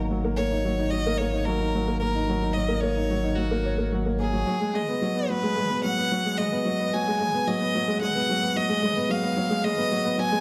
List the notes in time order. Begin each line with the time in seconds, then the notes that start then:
Already playing: G#1 F#3 A#3 D#4
0.11 F#3
0.24 A#3
0.37 A#3 C#5
0.52 D#4
0.65 F#3
0.79 D#4
0.91 F#3 D#5
1.06 A#3
1.17 A#3 C#5
1.33 D#4
1.45 F#3 A#4
1.61 D#4
1.75 F#3
1.88 A#3
1.99 A#3 A#4
2.15 D#4
2.29 F#3
2.43 D#4
2.53 F#3 D#5
2.68 A#3
2.81 A#3 C#5
2.97 D#4
3.11 F#3
3.24 D#4
3.35 F#3 F#4
3.51 A#3
3.65 C#5
3.78 A#3
3.92 F#3
4.05 A#3
4.20 A#3 G#4
4.33 F#3
4.47 F#3
4.61 G#3
4.74 G#3 D#5, mid tom
4.88 B3
5.02 F#3
5.16 B3
5.29 F#3 B4
5.43 G#3
5.56 G#3, mid tom
5.70 B3
5.84 F#3 F#5
5.98 B3
6.12 F#3
6.25 G#3
6.37 G#3 D#5, mid tom
6.52 B3
6.65 F#3
6.80 B3
6.94 F#3 G#5
7.08 G#3
7.19 G#3, mid tom
7.34 B3
7.47 F#3 D#5
7.60 B3
7.75 F#3
7.88 G#3
8.00 G#3 F#5, mid tom
8.15 B3
8.29 F#3
8.42 B3
8.56 F#3 D#5
8.69 G#3
8.82 G#3, mid tom
8.96 B3
9.09 F#3 F5
9.23 B3
9.36 F#3
9.50 G#3
9.64 G#3 D#5, mid tom
9.78 B3
9.91 F#3
10.05 B3
10.18 F#3 G#5
10.32 G#3